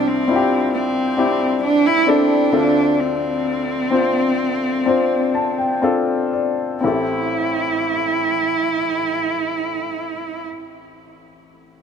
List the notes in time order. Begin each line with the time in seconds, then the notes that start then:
Already playing: C2 C3 C4 D4 E4 G4
0.01 D4
0.08 C4
0.27 C4 D4 E4 F4
0.36 G4
0.74 C4
1.17 C4 D4 E4 G4
1.64 D4
1.87 E4
2.06 C4 D4 E4 A4
2.52 D2 D3 C4 D4 F4 A4
3.00 C4
3.91 C4 D4 F4 C5
4.86 C4 D4 F4 C5
5.35 A5
5.59 G5
5.82 C4 D4 F4 A4 F5
6.33 D5
6.81 A1 C4 E4
6.85 G4 A4